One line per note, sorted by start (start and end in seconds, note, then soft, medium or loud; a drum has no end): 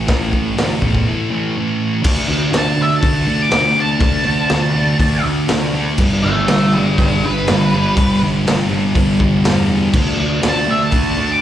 0.07 0.32 A1 medium
0.07 0.55 A2 medium
0.07 0.35 E3 loud
0.07 kick loud
0.07 snare loud
0.07 open hi-hat medium
0.11 0.32 A3 loud
0.33 0.56 A1 medium
0.33 0.57 E3 medium
0.33 0.58 A3 medium
0.33 kick medium
0.56 0.80 D2 medium
0.56 1.06 A2 medium
0.56 0.84 E3 medium
0.56 0.81 A3 medium
0.56 snare loud
0.56 open hi-hat medium
0.81 1.05 E2 medium
0.81 1.29 A3 medium
0.81 kick medium
0.85 1.33 E3 medium
0.95 kick medium
1.31 1.57 E3 medium
1.31 1.58 A3 medium
1.56 2.02 A2 medium
1.56 2.04 E3 medium
1.56 2.03 A3 loud
2.02 2.26 D2 medium
2.02 2.28 D3 medium
2.02 2.28 A3 loud
2.02 2.29 D4 loud
2.02 kick loud
2.02 crash loud
2.28 2.51 D2 medium
2.28 2.50 D3 medium
2.28 2.52 A3 medium
2.28 2.52 D4 medium
2.51 2.97 D2 medium
2.51 2.77 D3 loud
2.51 2.77 A3 loud
2.51 2.78 D4 loud
2.51 snare loud
2.51 open hi-hat medium
2.57 2.80 A5 medium
2.77 3.00 D3 medium
2.77 3.01 A3 medium
2.77 3.02 D4 loud
2.82 2.93 E5 medium
2.96 3.42 A5 medium
3.01 3.25 D2 medium
3.01 3.25 D3 loud
3.01 3.26 A3 loud
3.01 3.27 D4 loud
3.01 kick loud
3.01 open hi-hat medium
3.26 3.49 D2 medium
3.26 3.48 D3 medium
3.26 3.50 A3 medium
3.26 3.51 D4 loud
3.42 3.77 D6 medium
3.49 3.95 D2 medium
3.49 3.73 D3 medium
3.49 3.74 A3 loud
3.49 3.75 D4 loud
3.49 snare loud
3.49 open hi-hat medium
3.74 3.99 D3 medium
3.74 3.99 A3 medium
3.74 4.01 D4 loud
3.80 5.23 A5 medium
4.00 4.22 D2 loud
4.00 4.24 D3 loud
4.00 4.24 A3 loud
4.00 4.26 D4 loud
4.00 kick loud
4.00 open hi-hat medium
4.24 4.47 D2 medium
4.24 4.50 D3 medium
4.24 4.50 A3 medium
4.24 4.52 D4 medium
4.49 4.94 D2 medium
4.49 4.73 D3 loud
4.49 4.74 A3 loud
4.49 4.75 D4 loud
4.49 snare loud
4.49 open hi-hat medium
4.74 4.98 D3 medium
4.74 5.00 A3 medium
4.74 5.02 D4 medium
4.99 5.21 D2 medium
4.99 5.22 D3 loud
4.99 5.24 A3 loud
4.99 5.25 D4 loud
4.99 kick loud
4.99 open hi-hat medium
5.23 5.46 D2 medium
5.23 5.46 D3 loud
5.23 5.47 A3 medium
5.23 5.50 D4 medium
5.48 5.93 D2 medium
5.48 5.72 D3 loud
5.48 5.72 A3 medium
5.48 5.74 D4 loud
5.48 snare loud
5.48 open hi-hat medium
5.73 5.97 D3 medium
5.73 5.97 A3 loud
5.73 9.25 D4 medium
5.98 6.20 G1 loud
5.98 6.23 G2 medium
5.98 6.24 D3 loud
5.98 6.25 G3 loud
5.98 kick loud
5.98 crash loud
6.23 6.46 G1 medium
6.23 6.48 G2 medium
6.23 6.48 D3 medium
6.23 6.50 G3 medium
6.23 6.47 E5 medium
6.23 6.48 A5 loud
6.48 6.92 G1 loud
6.48 6.74 G2 loud
6.48 6.75 D3 loud
6.48 6.76 G3 loud
6.48 6.71 E5 medium
6.48 6.73 A5 medium
6.48 snare loud
6.48 open hi-hat medium
6.74 6.97 G2 medium
6.74 6.99 D3 medium
6.74 6.99 G3 loud
6.74 6.97 B4 medium
6.74 6.98 G5 medium
6.98 7.20 G1 medium
6.98 7.24 G2 loud
6.98 7.24 D3 loud
6.98 7.25 G3 loud
6.98 7.23 B4 medium
6.98 kick loud
6.98 open hi-hat medium
7.02 7.24 G5 medium
7.24 7.45 G1 medium
7.24 7.49 G2 medium
7.24 7.50 D3 medium
7.24 7.50 G3 loud
7.24 8.20 B4 loud
7.47 7.92 G1 medium
7.47 7.72 G2 medium
7.47 7.72 D3 loud
7.47 7.74 G3 loud
7.47 snare loud
7.47 open hi-hat medium
7.73 7.98 G2 loud
7.73 7.98 D3 medium
7.73 7.99 G3 loud
7.96 8.18 G1 loud
7.96 8.21 G2 loud
7.96 8.22 D3 medium
7.96 kick loud
7.96 open hi-hat medium
8.00 8.23 G3 loud
8.21 8.43 G1 medium
8.21 8.44 G2 medium
8.21 8.45 D3 medium
8.21 8.46 G3 medium
8.45 8.89 G1 medium
8.45 8.69 G2 loud
8.45 8.69 D3 loud
8.45 8.70 G3 loud
8.45 snare loud
8.45 open hi-hat medium
8.70 8.94 G2 medium
8.70 8.95 D3 medium
8.70 8.95 G3 medium
8.95 9.17 G1 medium
8.95 9.19 G2 loud
8.95 9.20 D3 medium
8.95 9.20 G3 loud
8.95 kick loud
8.95 open hi-hat medium
9.20 9.42 G1 medium
9.20 9.45 G2 medium
9.20 9.46 D3 medium
9.20 9.46 G3 loud
9.20 kick medium
9.44 9.87 E2 medium
9.44 9.69 G2 medium
9.44 9.70 D3 loud
9.44 9.70 G3 loud
9.44 snare loud
9.44 open hi-hat medium
9.71 9.93 G2 medium
9.71 9.93 D3 loud
9.71 9.94 G3 loud
9.93 10.15 D2 medium
9.93 10.18 D3 loud
9.93 10.19 A3 loud
9.93 10.19 D4 loud
9.93 kick loud
9.93 crash loud
10.18 10.40 D2 medium
10.18 10.41 D3 medium
10.18 10.43 A3 medium
10.18 10.44 D4 medium
10.42 10.87 D2 medium
10.42 10.67 D3 loud
10.42 10.68 A3 loud
10.42 10.68 D4 loud
10.42 snare loud
10.42 open hi-hat medium
10.49 10.70 A5 loud
10.67 10.91 D3 medium
10.67 10.91 A3 loud
10.67 10.93 D4 loud
10.67 10.81 E5 medium
10.83 11.30 A5 medium
10.91 11.14 D2 medium
10.91 11.17 D3 loud
10.91 11.18 A3 loud
10.91 11.20 D4 loud
10.91 kick loud
10.91 open hi-hat medium
11.17 11.39 D2 medium
11.17 11.40 D3 medium
11.17 11.41 A3 medium
11.17 11.41 D4 loud
11.32 11.41 D6 medium